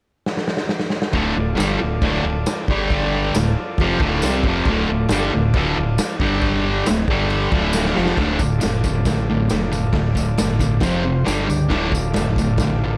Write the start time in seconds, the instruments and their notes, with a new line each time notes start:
0.26 snare
0.37 snare
0.48 snare
0.57 snare
0.69 snare
0.80 snare
0.90 snare
1.02 snare
1.13 fingered electric bass D1, distorted electric guitar D2 A2 D3, transistor combo organ F4 A4, kick, crash
1.18 transistor combo organ D5
1.35 fingered electric bass D1, distorted electric guitar D2 A2
1.55 fingered electric bass G1, distorted electric guitar G2 D3 G3, snare, crash
1.60 tambourine
1.79 fingered electric bass D1, distorted electric guitar D2 A2
2.02 fingered electric bass D1, distorted electric guitar D2 A2 D3, kick, crash
2.23 fingered electric bass D1, distorted electric guitar D2 A2
2.46 snare, tambourine, crash
2.68 fingered electric bass G1, distorted electric guitar G2 D3 G3, transistor combo organ D4 G4 D5, kick
2.90 kick, crash
3.34 fingered electric bass D1, distorted electric guitar D2 A2, transistor combo organ F4 A4 D5, snare, tambourine, crash
3.78 fingered electric bass F1, distorted electric guitar F2 C3 F3, kick, crash
3.99 fingered electric bass D1, distorted electric guitar D2 A2 D3, kick
4.22 fingered electric bass C2, distorted electric guitar C3 G3 C4, snare, tambourine, crash
4.44 fingered electric bass F1, distorted electric guitar F2 C3, kick
4.48 distorted electric guitar F3
4.65 fingered electric bass D1, distorted electric guitar D2 A2, kick, crash
4.70 distorted electric guitar D3
4.89 fingered electric bass D1, distorted electric guitar D2 A2
5.09 fingered electric bass G1, distorted electric guitar G2 D3, snare, tambourine, crash
5.13 distorted electric guitar G3
5.33 fingered electric bass D1, distorted electric guitar D2 A2
5.54 fingered electric bass D1, distorted electric guitar D2 A2 D3, kick, crash
5.77 fingered electric bass D1, distorted electric guitar D2 A2
5.98 snare, tambourine, crash
6.19 fingered electric bass G1, distorted electric guitar G2 D3 G3, transistor combo organ D4 G4 D5, kick
6.41 kick, crash
6.86 fingered electric bass D1, distorted electric guitar D2 A2, snare, tambourine, crash
7.08 fingered electric bass G1, distorted electric guitar G2 D3, transistor combo organ D4 G4 D5, kick
7.12 distorted electric guitar G3
7.30 crash
7.52 fingered electric bass D1, distorted electric guitar D2 A2 D3, transistor combo organ F4 A4 D5, kick
7.73 snare, tambourine
7.78 transistor combo organ F5
7.85 snare
7.95 fingered electric bass F1, distorted electric guitar F2 C3 F3, transistor combo organ A5, snare
8.06 snare
8.16 fingered electric bass D1, distorted electric guitar D2 A2 D3, transistor combo organ F4 A4 D5, kick, snare, crash
8.39 distorted electric guitar D2 A2, kick, tambourine
8.60 fingered electric bass F1, distorted electric guitar D2 A2, snare, tambourine, crash
8.84 fingered electric bass F1, distorted electric guitar D2 A2, kick, tambourine
9.05 fingered electric bass A1, distorted electric guitar D2 A2, kick, snare, tambourine, crash
9.30 distorted electric guitar D2 A2
9.49 fingered electric bass F1, distorted electric guitar D2 A2, snare, tambourine, crash
9.71 distorted electric guitar D2 A2, tambourine
9.93 fingered electric bass D1, distorted electric guitar D2 A2, kick, snare, crash
10.15 fingered electric bass D1, distorted electric guitar D2 A2, kick, tambourine
10.38 fingered electric bass G1, distorted electric guitar D2 A2, snare, tambourine, crash
10.59 distorted electric guitar D2 A2, kick, tambourine
10.80 fingered electric bass F1, distorted electric guitar F2 C3 F3, transistor combo organ C4 F4 C5, kick, snare, tambourine, crash
11.05 distorted electric guitar F2 C3
11.24 fingered electric bass G1, distorted electric guitar G2 D3 G3, transistor combo organ D4 G4 D5, snare, tambourine, crash
11.47 fingered electric bass C#2, distorted electric guitar G2 D3, tambourine
11.68 fingered electric bass D1, distorted electric guitar D2 A2 D3, transistor combo organ F4 A4, kick, snare, crash
11.73 transistor combo organ D5
11.92 distorted electric guitar D2 A2, kick, tambourine
12.13 fingered electric bass F1, distorted electric guitar D2 A2, snare, tambourine, crash
12.36 fingered electric bass F1, distorted electric guitar D2 A2, kick, tambourine
12.57 fingered electric bass A1, kick, snare, tambourine, crash
12.62 distorted electric guitar D2 A2
12.84 distorted electric guitar D2 A2